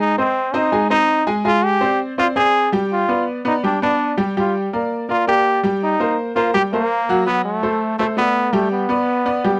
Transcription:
0.00 0.11 G#3 medium
0.00 0.17 D#4 loud
0.00 0.11 G#4 medium
0.00 0.11 G#5 medium
0.18 0.48 C4 medium
0.18 0.57 C4 medium
0.18 0.48 C5 medium
0.18 0.48 D#5 medium
0.54 0.69 C4 medium
0.54 0.90 D#4 loud
0.54 0.69 C5 medium
0.54 0.69 D#5 medium
0.72 0.87 G#3 medium
0.72 0.87 G#4 medium
0.72 0.87 G#5 medium
0.90 1.20 C4 medium
0.90 1.25 D#4 loud
0.90 1.20 C5 medium
0.90 1.21 D#5 medium
1.27 1.42 G#3 medium
1.27 1.42 G#4 medium
1.27 1.42 G#5 medium
1.45 1.75 G#3 medium
1.45 1.66 F4 loud
1.45 1.75 G#4 medium
1.45 1.75 G#5 medium
1.65 2.00 G4 loud
1.81 2.11 C4 medium
1.81 2.11 C5 medium
1.81 2.11 D5 medium
2.18 2.33 C4 medium
2.18 2.27 F4 loud
2.18 2.33 C5 medium
2.18 2.33 D5 medium
2.36 2.66 C4 medium
2.36 2.70 G#4 loud
2.36 2.66 C5 medium
2.36 2.66 D5 medium
2.72 3.02 G3 medium
2.72 3.03 G4 medium
2.72 3.03 G5 medium
2.92 3.25 F4 loud
3.08 3.38 B3 medium
3.08 3.39 B4 medium
3.08 3.39 D5 medium
3.45 3.60 B3 medium
3.45 3.56 D#4 medium
3.45 3.60 B4 medium
3.45 3.60 D5 medium
3.63 3.78 G3 medium
3.63 3.81 D4 medium
3.63 3.79 G4 medium
3.63 3.79 G5 medium
3.82 4.12 B3 medium
3.82 4.16 D4 loud
3.82 4.12 B4 medium
3.82 4.12 D5 medium
4.17 4.33 G3 medium
4.17 4.33 G4 medium
4.17 4.33 G5 medium
4.37 4.67 G3 medium
4.37 4.55 F4 medium
4.37 4.67 G4 medium
4.37 4.67 G5 medium
4.73 5.03 A#3 medium
4.73 5.03 A#4 medium
4.73 5.03 D5 medium
5.09 5.24 A#3 medium
5.09 5.27 F4 loud
5.09 5.24 A#4 medium
5.09 5.24 D5 medium
5.27 5.57 A#3 medium
5.27 5.62 G4 loud
5.27 5.57 A#4 medium
5.27 5.57 D5 medium
5.63 5.93 G3 medium
5.63 5.93 G4 medium
5.63 5.94 G5 medium
5.84 6.16 D#4 loud
6.00 6.29 A#3 medium
6.00 6.30 A#4 medium
6.00 6.30 C5 medium
6.36 6.51 A#3 medium
6.36 6.53 F4 medium
6.36 6.51 A#4 medium
6.36 6.51 C5 medium
6.54 6.69 G3 medium
6.54 6.62 G4 loud
6.54 6.69 G4 medium
6.54 6.69 G5 medium
6.73 7.23 A#3 loud
6.73 7.02 A#3 medium
6.73 7.03 A#4 medium
6.73 7.03 C5 medium
7.09 7.24 F#3 medium
7.09 7.24 F#4 medium
7.09 7.24 F#5 medium
7.26 7.56 F#3 medium
7.26 7.43 B3 loud
7.26 7.57 F#4 medium
7.26 7.57 F#5 medium
7.45 7.96 A3 medium
7.63 7.93 A3 medium
7.63 7.93 A4 medium
7.63 7.93 C5 medium
7.99 8.07 A3 medium
7.99 8.14 A3 medium
7.99 8.15 A4 medium
7.99 8.15 C5 medium
8.17 8.47 A3 medium
8.17 8.56 B3 loud
8.17 8.47 A4 medium
8.17 8.47 D5 medium
8.53 8.83 G3 medium
8.53 8.71 A3 medium
8.53 8.83 G4 medium
8.53 8.83 G5 medium
8.72 9.60 B3 medium
8.89 9.19 B3 medium
8.89 9.20 B4 medium
8.89 9.20 D5 medium
9.26 9.41 B3 medium
9.26 9.41 B4 medium
9.26 9.41 D5 medium
9.44 9.59 G3 medium
9.44 9.59 G4 medium
9.44 9.59 G5 medium

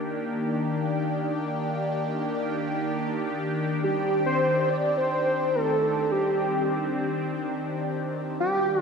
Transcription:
0.00 8.36 D#3 medium
0.00 3.80 A#3 medium
0.00 8.36 D4 medium
0.00 8.36 G4 medium
3.83 8.37 C4 medium
3.83 4.23 G4 loud
4.26 4.71 C5 loud
4.69 4.97 D5 loud
4.98 5.56 C5 loud
5.55 6.11 A4 loud
6.12 7.22 G4 medium
8.40 8.81 D#3 medium
8.40 8.81 A#3 medium
8.40 8.81 D4 medium
8.40 8.81 G4 loud
8.40 8.81 G4 medium

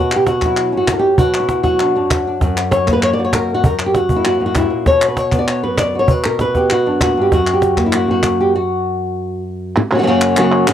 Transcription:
0.00 0.73 B2 medium
0.00 0.16 F#4 medium
0.12 clap medium
0.16 0.26 G4 medium
0.27 0.76 F#4 medium
0.27 cajon slap medium
0.41 1.43 F#3 medium
0.41 cajon bass medium
0.41 cajon slap soft
0.41 clap medium
0.46 1.08 E4 medium
0.57 clap medium
0.72 1.18 F#2 soft
0.72 1.21 C#4 soft
0.77 0.93 F#4 medium
0.88 cajon slap medium
0.88 clap medium
0.93 0.98 A#4 medium
0.99 1.18 G4 medium
1.18 1.95 B2 medium
1.18 1.48 F#4 medium
1.18 cajon bass medium
1.34 clap medium
1.40 1.80 E4 medium
1.49 1.62 F#4 medium
1.49 cajon slap medium
1.63 2.86 F#3 soft
1.63 2.41 F#4 medium
1.63 cajon bass medium
1.63 cajon slap soft
1.80 1.95 D4 soft
1.80 clap medium
1.96 2.41 F#2 medium
1.96 2.26 D4 soft
2.11 cajon bass medium
2.11 cajon slap medium
2.11 clap medium
2.27 2.40 D4 soft
2.41 3.17 F#2 medium
2.41 2.56 F#4 soft
2.41 cajon bass medium
2.41 cajon slap soft
2.57 3.19 F#4 soft
2.57 clap medium
2.71 2.92 C#5 medium
2.71 cajon slap medium
2.87 3.62 A#3 medium
2.87 cajon bass medium
2.87 cajon slap soft
2.87 clap medium
2.93 3.02 B4 medium
3.03 3.13 C#5 medium
3.03 clap medium
3.13 3.23 D5 medium
3.19 3.62 F#2 medium
3.19 3.54 F#4 soft
3.24 3.34 C#5 medium
3.33 3.54 A#4 medium
3.33 cajon slap medium
3.33 clap medium
3.49 cajon slap soft
3.54 3.64 F#4 medium
3.63 4.39 F#2 medium
3.63 3.95 A#4 medium
3.63 cajon bass medium
3.79 clap medium
3.86 3.95 G4 medium
3.94 4.25 F#4 medium
3.94 cajon slap medium
4.09 4.84 A#3 medium
4.09 4.41 C#4 soft
4.09 cajon bass medium
4.16 4.56 E4 medium
4.25 4.45 F#4 medium
4.25 clap medium
4.40 4.56 F#2 medium
4.40 4.90 C#4 soft
4.46 4.86 F#4 medium
4.55 4.70 G2 soft
4.55 4.87 E4 medium
4.55 cajon bass medium
4.55 cajon slap medium
4.55 clap medium
4.70 4.86 A#2 medium
4.70 cajon slap soft
4.86 5.63 B2 medium
4.86 5.07 C#5 medium
4.86 cajon bass medium
4.86 cajon slap soft
5.02 5.95 F#4 soft
5.02 clap medium
5.08 5.18 B4 medium
5.17 5.38 C#5 medium
5.17 cajon slap medium
5.32 6.07 B3 soft
5.32 cajon bass medium
5.32 clap medium
5.39 5.49 D5 medium
5.48 5.63 C#5 medium
5.48 clap medium
5.63 6.09 F#2 medium
5.63 5.78 B4 medium
5.77 5.99 D5 medium
5.77 cajon slap medium
5.77 clap medium
5.93 6.56 F#4 soft
5.93 cajon slap soft
5.99 6.10 C#5 medium
6.08 6.85 B2 medium
6.08 6.25 B4 medium
6.08 cajon bass medium
6.24 6.40 A#4 medium
6.24 clap medium
6.39 6.71 B4 medium
6.39 cajon slap medium
6.54 7.29 B3 soft
6.54 6.71 G4 medium
6.54 cajon bass medium
6.54 cajon slap soft
6.70 7.01 F#4 medium
6.70 clap medium
6.86 7.01 F#2 medium
6.86 7.30 D4 soft
7.01 7.16 A#2 medium
7.01 7.32 F#4 medium
7.01 cajon bass medium
7.01 cajon slap medium
7.01 clap medium
7.16 7.32 G2 medium
7.16 cajon slap soft
7.21 7.31 G4 medium
7.32 8.07 F#2 medium
7.32 7.83 F#4 medium
7.32 cajon bass medium
7.32 cajon slap soft
7.47 8.53 C#4 soft
7.47 clap medium
7.53 7.83 G4 medium
7.62 cajon slap medium
7.77 8.52 A#3 medium
7.77 cajon bass medium
7.77 cajon slap soft
7.77 clap medium
7.86 8.24 E4 medium
7.93 8.09 F#4 medium
7.93 clap medium
8.08 9.76 F#2 medium
8.08 8.54 F#4 medium
8.23 cajon slap medium
8.23 clap medium
8.38 8.55 G4 medium
8.38 cajon slap soft
8.55 9.42 F#4 medium
9.77 muted nylon-string guitar stroke medium
9.92 9.96 C#3 medium
9.92 9.95 F#3 soft
9.92 9.94 A#3 soft
9.92 9.94 C#4 soft
9.92 9.94 F#4 medium
9.92 9.98 F#4 medium
9.98 10.01 C#3 medium
9.98 10.02 F#3 medium
9.98 10.02 A#3 medium
9.98 10.03 C#4 medium
9.98 10.03 F#4 medium
10.02 10.06 C#3 medium
10.02 10.06 F#3 medium
10.02 10.07 A#3 medium
10.02 10.07 C#4 medium
10.02 10.07 F#4 medium
10.07 10.36 F#2 medium
10.07 10.37 C#3 medium
10.07 10.37 F#3 medium
10.07 10.37 A#3 medium
10.07 10.37 C#4 medium
10.07 10.37 F#4 medium
10.21 clap medium
10.37 10.67 F#2 medium
10.37 10.67 C#3 medium
10.37 10.67 F#3 medium
10.37 10.67 A#3 medium
10.37 10.67 C#4 medium
10.37 10.68 F#4 medium
10.37 clap medium
10.67 muted nylon-string guitar stroke medium
10.67 clap medium

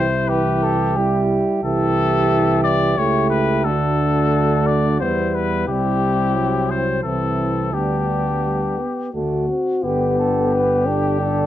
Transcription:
0.00 1.46 C2 soft
0.00 0.67 E4 soft
0.00 0.30 C5 medium
0.28 0.98 E3 soft
0.28 1.29 G4 medium
0.28 0.64 B4 medium
0.63 0.97 A4 soft
0.96 1.63 G3 soft
0.96 1.60 E4 soft
0.96 1.63 G4 soft
1.63 2.94 C2 soft
1.63 3.00 E3 medium
1.63 2.94 E4 medium
1.63 2.94 G4 medium
1.63 2.60 A4 medium
2.64 2.99 D5 medium
2.97 3.66 C#2 soft
2.97 3.65 A3 soft
2.97 3.64 E4 soft
2.97 3.68 G4 soft
2.97 3.29 C#5 medium
3.30 3.66 B4 medium
3.64 5.00 D2 soft
3.64 4.98 A3 soft
3.64 5.03 D4 soft
3.64 5.03 F#4 soft
3.64 4.68 A4 medium
4.66 4.99 D5 medium
5.00 5.67 E2 soft
5.00 5.66 G3 soft
5.00 5.68 B3 soft
5.00 5.68 E4 soft
5.00 5.36 C5 medium
5.34 5.67 B4 medium
5.67 7.01 C2 soft
5.67 6.37 G3 soft
5.67 7.02 C4 soft
5.67 6.88 E4 soft
5.67 6.72 G4 medium
6.36 7.05 F#3 soft
6.70 7.03 C5 soft
7.03 7.75 C2 soft
7.03 7.75 E3 soft
7.03 7.72 C4 soft
7.03 7.75 E4 soft
7.03 7.75 A4 soft
7.73 8.85 D2 soft
7.73 8.27 G3 soft
7.73 8.83 B3 soft
7.73 8.85 D4 soft
7.73 9.14 G4 soft
8.44 8.80 G3 soft
8.79 9.13 B3 soft
9.14 9.49 D2 soft
9.14 9.48 A3 soft
9.14 9.49 D4 soft
9.14 9.85 F#4 soft
9.49 9.83 C4 soft
9.84 11.46 G1 soft
9.84 11.46 D3 soft
9.84 10.88 B3 soft
9.84 11.46 G4 soft
9.84 10.16 G4 soft
10.19 10.55 A4 soft
10.53 10.86 B4 soft
10.86 11.20 D4 soft
10.86 11.20 G4 soft
11.20 11.46 D4 soft
11.20 11.46 A4 soft

